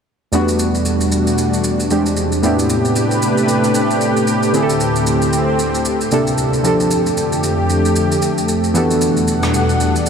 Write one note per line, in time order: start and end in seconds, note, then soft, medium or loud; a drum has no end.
0.32 1.87 E2 medium
0.32 2.41 E2 medium
0.32 1.89 B2 medium
0.32 1.87 G3 medium
0.32 1.89 G3 medium
0.32 1.89 A3 medium
0.32 1.88 A3 medium
0.32 1.88 B3 medium
0.32 2.41 D4 medium
0.32 1.89 D4 medium
0.32 1.89 F#4 medium
0.32 shaker medium
0.48 shaker medium
0.59 shaker medium
0.75 shaker medium
0.85 shaker medium
1.01 shaker medium
1.12 shaker medium
1.27 shaker medium
1.38 shaker medium
1.53 shaker medium
1.64 shaker medium
1.80 shaker medium
1.90 2.43 E2 medium
1.90 2.44 G#3 medium
1.90 2.43 C4 medium
1.90 2.43 D4 medium
1.90 6.08 G4 medium
1.90 2.44 G4 medium
1.90 shaker medium
2.06 shaker medium
2.17 shaker medium
2.32 shaker soft
2.42 4.49 A2 medium
2.42 6.08 A2 medium
2.42 4.52 C3 medium
2.42 4.52 A3 medium
2.42 4.50 B3 medium
2.42 4.50 C4 medium
2.42 4.52 D4 medium
2.42 4.51 D4 medium
2.42 4.51 E4 medium
2.42 4.51 G4 medium
2.42 4.52 B4 medium
2.42 shaker medium
2.59 shaker medium
2.70 shaker medium
2.85 shaker medium
2.96 shaker medium
3.11 shaker medium
3.22 shaker medium
3.38 shaker medium
3.48 shaker medium
3.64 shaker medium
3.75 shaker medium
3.91 shaker medium
4.01 shaker medium
4.17 shaker medium
4.27 shaker medium
4.43 shaker soft
4.53 6.10 D2 medium
4.53 6.08 D3 medium
4.53 6.09 C4 medium
4.53 6.10 C4 medium
4.53 6.09 E4 medium
4.53 6.10 G4 medium
4.53 4.63 G#4 medium
4.53 shaker medium
4.63 6.12 A4 medium
4.70 shaker medium
4.80 shaker medium
4.96 shaker medium
5.07 shaker medium
5.22 shaker medium
5.33 shaker medium
5.59 shaker medium
5.75 shaker medium
5.85 shaker medium
6.01 shaker medium
6.11 6.65 C3 medium
6.11 6.65 A#3 medium
6.11 6.64 D4 medium
6.11 6.65 E4 medium
6.11 6.65 G4 medium
6.11 6.65 A4 medium
6.11 shaker medium
6.27 shaker medium
6.38 shaker medium
6.53 shaker soft
6.63 8.73 F2 medium
6.63 8.73 D3 medium
6.63 8.71 F3 medium
6.63 10.09 A3 medium
6.63 8.71 C4 medium
6.63 8.71 D4 medium
6.63 8.73 G4 medium
6.63 8.72 G4 medium
6.63 8.72 A4 medium
6.63 shaker medium
6.80 shaker medium
6.91 shaker medium
7.06 shaker medium
7.17 shaker medium
7.32 shaker medium
7.43 shaker medium
7.70 shaker medium
7.85 shaker medium
7.96 shaker medium
8.12 shaker medium
8.22 shaker medium
8.38 shaker soft
8.48 shaker medium
8.64 shaker soft
8.74 10.09 E2 medium
8.74 10.09 B2 medium
8.74 10.09 E3 medium
8.74 10.09 G3 medium
8.74 10.09 B3 medium
8.74 10.09 D4 medium
8.74 10.09 F#4 medium
8.74 10.09 G4 medium
8.74 10.09 A4 medium
8.74 10.09 F#5 medium
8.74 shaker medium
8.91 shaker medium
9.01 shaker medium
9.17 shaker medium
9.28 shaker medium
9.43 cross-stick medium
9.43 shaker medium
9.54 shaker medium
9.69 shaker medium
9.80 shaker medium
9.96 shaker medium
10.06 shaker medium